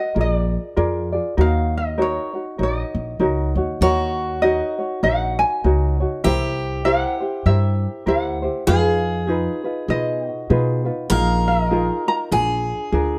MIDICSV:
0, 0, Header, 1, 5, 480
1, 0, Start_track
1, 0, Key_signature, -6, "minor"
1, 0, Tempo, 607903
1, 1089, Time_signature, 4, 2, 24, 8
1, 10413, End_track
2, 0, Start_track
2, 0, Title_t, "Ukulele"
2, 0, Program_c, 0, 24
2, 0, Note_on_c, 0, 75, 102
2, 143, Note_off_c, 0, 75, 0
2, 163, Note_on_c, 0, 74, 90
2, 879, Note_off_c, 0, 74, 0
2, 1113, Note_on_c, 0, 77, 105
2, 1393, Note_off_c, 0, 77, 0
2, 1402, Note_on_c, 0, 75, 81
2, 1589, Note_off_c, 0, 75, 0
2, 1595, Note_on_c, 0, 73, 91
2, 2075, Note_off_c, 0, 73, 0
2, 2078, Note_on_c, 0, 75, 89
2, 2797, Note_off_c, 0, 75, 0
2, 3020, Note_on_c, 0, 73, 90
2, 3487, Note_off_c, 0, 73, 0
2, 3490, Note_on_c, 0, 75, 95
2, 3972, Note_off_c, 0, 75, 0
2, 3976, Note_on_c, 0, 78, 108
2, 4251, Note_off_c, 0, 78, 0
2, 4255, Note_on_c, 0, 80, 93
2, 4702, Note_off_c, 0, 80, 0
2, 4926, Note_on_c, 0, 76, 96
2, 5405, Note_off_c, 0, 76, 0
2, 5409, Note_on_c, 0, 78, 109
2, 5889, Note_off_c, 0, 78, 0
2, 5892, Note_on_c, 0, 76, 109
2, 6379, Note_off_c, 0, 76, 0
2, 6382, Note_on_c, 0, 78, 93
2, 6853, Note_off_c, 0, 78, 0
2, 6856, Note_on_c, 0, 77, 87
2, 7583, Note_off_c, 0, 77, 0
2, 7818, Note_on_c, 0, 75, 115
2, 8544, Note_off_c, 0, 75, 0
2, 8780, Note_on_c, 0, 77, 101
2, 9059, Note_off_c, 0, 77, 0
2, 9062, Note_on_c, 0, 75, 85
2, 9536, Note_off_c, 0, 75, 0
2, 9539, Note_on_c, 0, 82, 112
2, 9591, Note_off_c, 0, 82, 0
2, 9734, Note_on_c, 0, 80, 97
2, 10413, Note_off_c, 0, 80, 0
2, 10413, End_track
3, 0, Start_track
3, 0, Title_t, "Steel-string acoustic guitar"
3, 0, Program_c, 1, 25
3, 3014, Note_on_c, 1, 66, 84
3, 4930, Note_on_c, 1, 67, 88
3, 4989, Note_off_c, 1, 66, 0
3, 6846, Note_on_c, 1, 68, 103
3, 6906, Note_off_c, 1, 67, 0
3, 8117, Note_off_c, 1, 68, 0
3, 8117, Note_on_c, 1, 66, 103
3, 8762, Note_on_c, 1, 70, 108
3, 8823, Note_off_c, 1, 66, 0
3, 9725, Note_off_c, 1, 70, 0
3, 9728, Note_on_c, 1, 68, 84
3, 10413, Note_off_c, 1, 68, 0
3, 10413, End_track
4, 0, Start_track
4, 0, Title_t, "Ukulele"
4, 0, Program_c, 2, 24
4, 0, Note_on_c, 2, 66, 40
4, 0, Note_on_c, 2, 70, 47
4, 0, Note_on_c, 2, 78, 54
4, 106, Note_off_c, 2, 70, 0
4, 115, Note_on_c, 2, 70, 59
4, 119, Note_off_c, 2, 66, 0
4, 122, Note_on_c, 2, 65, 55
4, 126, Note_off_c, 2, 78, 0
4, 130, Note_on_c, 2, 68, 70
4, 135, Note_on_c, 2, 74, 72
4, 596, Note_off_c, 2, 65, 0
4, 601, Note_off_c, 2, 70, 0
4, 601, Note_off_c, 2, 74, 0
4, 602, Note_off_c, 2, 68, 0
4, 604, Note_on_c, 2, 70, 90
4, 605, Note_on_c, 2, 65, 96
4, 610, Note_on_c, 2, 74, 90
4, 612, Note_on_c, 2, 68, 97
4, 877, Note_off_c, 2, 74, 0
4, 887, Note_off_c, 2, 68, 0
4, 887, Note_on_c, 2, 74, 56
4, 890, Note_off_c, 2, 70, 0
4, 891, Note_off_c, 2, 65, 0
4, 897, Note_on_c, 2, 68, 53
4, 902, Note_on_c, 2, 65, 49
4, 1082, Note_off_c, 2, 65, 0
4, 1083, Note_on_c, 2, 70, 76
4, 1085, Note_on_c, 2, 63, 79
4, 1086, Note_off_c, 2, 74, 0
4, 1088, Note_off_c, 2, 68, 0
4, 1091, Note_on_c, 2, 66, 80
4, 1093, Note_on_c, 2, 73, 78
4, 1553, Note_off_c, 2, 63, 0
4, 1557, Note_off_c, 2, 66, 0
4, 1558, Note_off_c, 2, 70, 0
4, 1560, Note_off_c, 2, 73, 0
4, 1562, Note_on_c, 2, 63, 81
4, 1562, Note_on_c, 2, 70, 88
4, 1566, Note_on_c, 2, 66, 82
4, 1570, Note_on_c, 2, 73, 84
4, 1835, Note_off_c, 2, 73, 0
4, 1843, Note_off_c, 2, 66, 0
4, 1844, Note_on_c, 2, 73, 46
4, 1849, Note_off_c, 2, 70, 0
4, 1850, Note_off_c, 2, 63, 0
4, 1853, Note_on_c, 2, 66, 44
4, 1861, Note_on_c, 2, 63, 41
4, 2036, Note_off_c, 2, 63, 0
4, 2039, Note_on_c, 2, 70, 59
4, 2042, Note_off_c, 2, 66, 0
4, 2045, Note_off_c, 2, 73, 0
4, 2045, Note_on_c, 2, 63, 62
4, 2052, Note_on_c, 2, 66, 66
4, 2055, Note_on_c, 2, 73, 58
4, 2520, Note_off_c, 2, 63, 0
4, 2523, Note_off_c, 2, 66, 0
4, 2523, Note_off_c, 2, 70, 0
4, 2526, Note_off_c, 2, 73, 0
4, 2526, Note_on_c, 2, 70, 83
4, 2529, Note_on_c, 2, 63, 98
4, 2532, Note_on_c, 2, 66, 99
4, 2535, Note_on_c, 2, 73, 88
4, 2806, Note_off_c, 2, 73, 0
4, 2812, Note_off_c, 2, 70, 0
4, 2813, Note_off_c, 2, 63, 0
4, 2813, Note_off_c, 2, 66, 0
4, 2816, Note_on_c, 2, 73, 53
4, 2823, Note_on_c, 2, 66, 50
4, 2830, Note_on_c, 2, 63, 47
4, 3010, Note_off_c, 2, 63, 0
4, 3011, Note_off_c, 2, 73, 0
4, 3012, Note_off_c, 2, 66, 0
4, 3014, Note_on_c, 2, 70, 76
4, 3019, Note_on_c, 2, 63, 66
4, 3022, Note_on_c, 2, 66, 79
4, 3026, Note_on_c, 2, 73, 89
4, 3488, Note_off_c, 2, 70, 0
4, 3490, Note_off_c, 2, 66, 0
4, 3491, Note_off_c, 2, 63, 0
4, 3492, Note_on_c, 2, 70, 70
4, 3496, Note_off_c, 2, 73, 0
4, 3500, Note_on_c, 2, 63, 81
4, 3500, Note_on_c, 2, 66, 96
4, 3505, Note_on_c, 2, 73, 87
4, 3770, Note_off_c, 2, 73, 0
4, 3775, Note_off_c, 2, 70, 0
4, 3779, Note_off_c, 2, 63, 0
4, 3779, Note_off_c, 2, 66, 0
4, 3779, Note_on_c, 2, 73, 45
4, 3787, Note_on_c, 2, 66, 47
4, 3795, Note_on_c, 2, 63, 40
4, 3967, Note_off_c, 2, 63, 0
4, 3969, Note_on_c, 2, 70, 60
4, 3973, Note_off_c, 2, 66, 0
4, 3973, Note_off_c, 2, 73, 0
4, 3976, Note_on_c, 2, 63, 68
4, 3982, Note_on_c, 2, 66, 68
4, 3986, Note_on_c, 2, 73, 69
4, 4447, Note_off_c, 2, 63, 0
4, 4451, Note_off_c, 2, 70, 0
4, 4452, Note_off_c, 2, 66, 0
4, 4455, Note_on_c, 2, 70, 78
4, 4456, Note_off_c, 2, 73, 0
4, 4457, Note_on_c, 2, 63, 87
4, 4461, Note_on_c, 2, 66, 84
4, 4465, Note_on_c, 2, 73, 89
4, 4729, Note_off_c, 2, 73, 0
4, 4736, Note_off_c, 2, 70, 0
4, 4737, Note_off_c, 2, 63, 0
4, 4739, Note_off_c, 2, 66, 0
4, 4739, Note_on_c, 2, 73, 53
4, 4749, Note_on_c, 2, 66, 48
4, 4754, Note_on_c, 2, 63, 39
4, 4927, Note_on_c, 2, 70, 79
4, 4929, Note_off_c, 2, 63, 0
4, 4932, Note_off_c, 2, 66, 0
4, 4932, Note_off_c, 2, 73, 0
4, 4933, Note_on_c, 2, 64, 81
4, 4936, Note_on_c, 2, 67, 77
4, 4943, Note_on_c, 2, 72, 75
4, 5397, Note_off_c, 2, 70, 0
4, 5401, Note_off_c, 2, 64, 0
4, 5407, Note_off_c, 2, 67, 0
4, 5407, Note_off_c, 2, 72, 0
4, 5407, Note_on_c, 2, 70, 78
4, 5411, Note_on_c, 2, 64, 85
4, 5416, Note_on_c, 2, 67, 78
4, 5416, Note_on_c, 2, 72, 84
4, 5678, Note_off_c, 2, 72, 0
4, 5687, Note_off_c, 2, 67, 0
4, 5688, Note_on_c, 2, 72, 47
4, 5692, Note_off_c, 2, 70, 0
4, 5694, Note_off_c, 2, 64, 0
4, 5696, Note_on_c, 2, 67, 43
4, 5702, Note_on_c, 2, 64, 43
4, 5886, Note_off_c, 2, 64, 0
4, 5886, Note_off_c, 2, 72, 0
4, 5887, Note_off_c, 2, 67, 0
4, 5890, Note_on_c, 2, 70, 56
4, 5895, Note_on_c, 2, 64, 63
4, 5899, Note_on_c, 2, 67, 65
4, 5902, Note_on_c, 2, 72, 65
4, 6355, Note_off_c, 2, 70, 0
4, 6363, Note_off_c, 2, 64, 0
4, 6364, Note_off_c, 2, 67, 0
4, 6364, Note_on_c, 2, 70, 83
4, 6366, Note_off_c, 2, 72, 0
4, 6372, Note_on_c, 2, 64, 91
4, 6374, Note_on_c, 2, 67, 96
4, 6375, Note_on_c, 2, 72, 91
4, 6640, Note_off_c, 2, 72, 0
4, 6649, Note_on_c, 2, 72, 54
4, 6650, Note_off_c, 2, 70, 0
4, 6654, Note_off_c, 2, 64, 0
4, 6655, Note_off_c, 2, 67, 0
4, 6662, Note_on_c, 2, 67, 44
4, 6666, Note_on_c, 2, 64, 47
4, 6840, Note_off_c, 2, 67, 0
4, 6843, Note_on_c, 2, 68, 79
4, 6847, Note_off_c, 2, 72, 0
4, 6849, Note_off_c, 2, 64, 0
4, 6850, Note_on_c, 2, 63, 67
4, 6852, Note_on_c, 2, 65, 78
4, 6855, Note_on_c, 2, 71, 90
4, 7319, Note_off_c, 2, 68, 0
4, 7322, Note_on_c, 2, 68, 77
4, 7328, Note_off_c, 2, 63, 0
4, 7329, Note_off_c, 2, 71, 0
4, 7330, Note_off_c, 2, 65, 0
4, 7331, Note_on_c, 2, 63, 89
4, 7333, Note_on_c, 2, 65, 84
4, 7338, Note_on_c, 2, 71, 82
4, 7604, Note_off_c, 2, 71, 0
4, 7608, Note_off_c, 2, 68, 0
4, 7613, Note_off_c, 2, 63, 0
4, 7614, Note_off_c, 2, 65, 0
4, 7614, Note_on_c, 2, 71, 58
4, 7623, Note_on_c, 2, 65, 49
4, 7627, Note_on_c, 2, 63, 45
4, 7799, Note_off_c, 2, 63, 0
4, 7801, Note_on_c, 2, 68, 61
4, 7804, Note_off_c, 2, 65, 0
4, 7808, Note_off_c, 2, 71, 0
4, 7808, Note_on_c, 2, 63, 62
4, 7814, Note_on_c, 2, 65, 66
4, 7817, Note_on_c, 2, 71, 70
4, 8281, Note_off_c, 2, 63, 0
4, 8285, Note_off_c, 2, 68, 0
4, 8288, Note_off_c, 2, 71, 0
4, 8288, Note_on_c, 2, 68, 77
4, 8291, Note_on_c, 2, 63, 91
4, 8292, Note_off_c, 2, 65, 0
4, 8295, Note_on_c, 2, 65, 87
4, 8298, Note_on_c, 2, 71, 93
4, 8559, Note_off_c, 2, 71, 0
4, 8564, Note_off_c, 2, 65, 0
4, 8568, Note_on_c, 2, 71, 53
4, 8571, Note_off_c, 2, 68, 0
4, 8572, Note_off_c, 2, 63, 0
4, 8574, Note_on_c, 2, 65, 55
4, 8581, Note_on_c, 2, 63, 48
4, 8760, Note_off_c, 2, 63, 0
4, 8762, Note_off_c, 2, 65, 0
4, 8765, Note_off_c, 2, 71, 0
4, 8765, Note_on_c, 2, 68, 72
4, 8770, Note_on_c, 2, 63, 68
4, 8772, Note_on_c, 2, 65, 78
4, 8777, Note_on_c, 2, 70, 88
4, 9235, Note_off_c, 2, 68, 0
4, 9241, Note_off_c, 2, 63, 0
4, 9241, Note_off_c, 2, 65, 0
4, 9244, Note_on_c, 2, 68, 76
4, 9250, Note_on_c, 2, 63, 76
4, 9251, Note_on_c, 2, 65, 90
4, 9255, Note_off_c, 2, 70, 0
4, 9258, Note_on_c, 2, 70, 88
4, 9519, Note_off_c, 2, 70, 0
4, 9525, Note_off_c, 2, 68, 0
4, 9526, Note_off_c, 2, 65, 0
4, 9528, Note_on_c, 2, 70, 43
4, 9532, Note_off_c, 2, 63, 0
4, 9536, Note_on_c, 2, 65, 44
4, 9546, Note_on_c, 2, 63, 39
4, 9721, Note_off_c, 2, 70, 0
4, 9724, Note_on_c, 2, 68, 59
4, 9726, Note_off_c, 2, 63, 0
4, 9729, Note_off_c, 2, 65, 0
4, 9729, Note_on_c, 2, 62, 66
4, 9737, Note_on_c, 2, 65, 63
4, 9737, Note_on_c, 2, 70, 77
4, 10194, Note_off_c, 2, 68, 0
4, 10201, Note_off_c, 2, 62, 0
4, 10202, Note_off_c, 2, 65, 0
4, 10203, Note_on_c, 2, 68, 83
4, 10211, Note_on_c, 2, 62, 77
4, 10212, Note_on_c, 2, 65, 86
4, 10214, Note_off_c, 2, 70, 0
4, 10217, Note_on_c, 2, 70, 99
4, 10413, Note_off_c, 2, 62, 0
4, 10413, Note_off_c, 2, 65, 0
4, 10413, Note_off_c, 2, 68, 0
4, 10413, Note_off_c, 2, 70, 0
4, 10413, End_track
5, 0, Start_track
5, 0, Title_t, "Upright bass"
5, 0, Program_c, 3, 32
5, 126, Note_on_c, 3, 34, 91
5, 439, Note_off_c, 3, 34, 0
5, 609, Note_on_c, 3, 41, 97
5, 921, Note_off_c, 3, 41, 0
5, 1088, Note_on_c, 3, 39, 95
5, 1713, Note_off_c, 3, 39, 0
5, 2046, Note_on_c, 3, 34, 89
5, 2232, Note_off_c, 3, 34, 0
5, 2326, Note_on_c, 3, 34, 82
5, 2506, Note_off_c, 3, 34, 0
5, 2523, Note_on_c, 3, 37, 78
5, 2782, Note_off_c, 3, 37, 0
5, 2807, Note_on_c, 3, 39, 81
5, 2987, Note_off_c, 3, 39, 0
5, 3008, Note_on_c, 3, 39, 90
5, 3632, Note_off_c, 3, 39, 0
5, 3971, Note_on_c, 3, 34, 93
5, 4283, Note_off_c, 3, 34, 0
5, 4457, Note_on_c, 3, 37, 89
5, 4766, Note_off_c, 3, 37, 0
5, 4935, Note_on_c, 3, 36, 87
5, 5557, Note_off_c, 3, 36, 0
5, 5889, Note_on_c, 3, 43, 95
5, 6200, Note_off_c, 3, 43, 0
5, 6370, Note_on_c, 3, 38, 92
5, 6681, Note_off_c, 3, 38, 0
5, 6852, Note_on_c, 3, 41, 92
5, 7474, Note_off_c, 3, 41, 0
5, 7805, Note_on_c, 3, 47, 89
5, 8117, Note_off_c, 3, 47, 0
5, 8292, Note_on_c, 3, 47, 98
5, 8602, Note_off_c, 3, 47, 0
5, 8764, Note_on_c, 3, 34, 93
5, 9389, Note_off_c, 3, 34, 0
5, 9724, Note_on_c, 3, 34, 94
5, 10037, Note_off_c, 3, 34, 0
5, 10205, Note_on_c, 3, 38, 90
5, 10413, Note_off_c, 3, 38, 0
5, 10413, End_track
0, 0, End_of_file